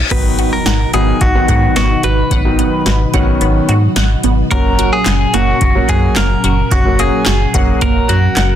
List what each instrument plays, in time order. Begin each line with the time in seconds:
Already playing: reverse cymbal
0.11 fm bass G#1, string machine B2 D#3 F#3 D#4 F#4, grand piano D#3 F#3 B3 D#4, synth arpeggio sound B3, clean electric guitar B4, kick, closed hi-hat, crash, impact
0.39 synth arpeggio sound F#4, closed hi-hat
0.53 clean electric guitar A#4
0.66 fm bass G#1, synth arpeggio sound F#5, snare, closed hi-hat
0.93 fm bass G#1, grand piano D#3 F#3 B3 D#4, synth arpeggio sound B3, clean electric guitar G#4, closed hi-hat
1.21 fm bass G#1, clean electric guitar F#4, kick, closed hi-hat
1.35 grand piano D#3 F#3 B3 F#4
1.48 fm bass G#2, synth arpeggio sound F#5, kick, closed hi-hat
1.76 fm bass G#1, synth arpeggio sound B3, clean electric guitar F#4, snare, closed hi-hat
2.03 fm bass G#1, synth arpeggio sound F#4, clean electric guitar B4, closed hi-hat
2.31 fm bass G#1, grand piano B3 C#4, synth arpeggio sound F#5, kick, closed hi-hat
2.45 grand piano D#3 F#3 B3 D#4
2.59 synth arpeggio sound B3, closed hi-hat
2.86 fm bass G#1, synth arpeggio sound F#4, snare, closed hi-hat
3.14 fm bass G#1, grand piano D#3 F#3 B3 C#4, synth arpeggio sound F#5, kick, closed hi-hat
3.41 fm bass G#1, synth arpeggio sound B3, closed hi-hat
3.69 fm bass G#2, synth arpeggio sound F#4, closed hi-hat
3.96 fm bass G#1, synth arpeggio sound F#5, snare, closed hi-hat
4.23 fm bass G#1, synth arpeggio sound B3, closed hi-hat
4.51 fm bass F#1, string machine A#2 C#3 C#4, grand piano F#3 A#3 C#4 F#4, synth arpeggio sound A#3, clean electric guitar A#4, kick, closed hi-hat
4.79 synth arpeggio sound F#4, closed hi-hat
4.93 clean electric guitar G#4
5.06 fm bass F#1, synth arpeggio sound F#5, snare, clap, closed hi-hat
5.34 fm bass F#1, grand piano F#3 A#3 C#4 F#4, synth arpeggio sound A#3, clean electric guitar F#4, closed hi-hat
5.61 fm bass F#1, kick, closed hi-hat
5.75 grand piano F#3 A#3 C#4 F#4
5.89 fm bass F#2, clean electric guitar G#4, synth arpeggio sound F#5, kick, closed hi-hat
6.16 fm bass F#1, synth arpeggio sound A#3, clean electric guitar A#4, snare, clap, closed hi-hat
6.44 fm bass F#1, synth arpeggio sound F#4, closed hi-hat
6.71 fm bass F#1, grand piano C#4 F#4, clean electric guitar F#4, synth arpeggio sound F#5, kick, closed hi-hat
6.85 grand piano F#3 A#3 C#4 F#4
6.99 synth arpeggio sound A#3, clean electric guitar G#4, closed hi-hat
7.26 fm bass F#1, synth arpeggio sound F#4, snare, clap, closed hi-hat
7.54 fm bass F#1, grand piano F#3 A#3 C#4 F#4, synth arpeggio sound F#5, kick, closed hi-hat
7.81 fm bass F#1, synth arpeggio sound A#3, clean electric guitar A#4, kick, closed hi-hat
8.09 fm bass F#2, synth arpeggio sound F#4, clean electric guitar F#4, closed hi-hat
8.37 fm bass F#1, synth arpeggio sound F#5, snare, clap, closed hi-hat